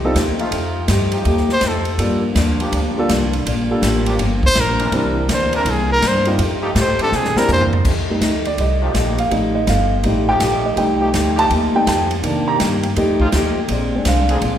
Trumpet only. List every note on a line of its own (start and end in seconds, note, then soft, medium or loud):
1.53 1.69 C5 loud
1.68 2.02 A4 medium
4.46 4.62 C5 loud
4.60 4.95 A#4 loud
5.34 5.54 C5 medium
5.56 5.73 A#4 medium
5.71 5.92 G#4 medium
5.92 6.09 A#4 loud
6.08 6.29 C5 medium
6.81 7.00 C5 medium
7.02 7.17 A4 loud
7.16 7.39 G#4 medium
7.38 7.49 A#4 medium
7.52 7.65 C5 medium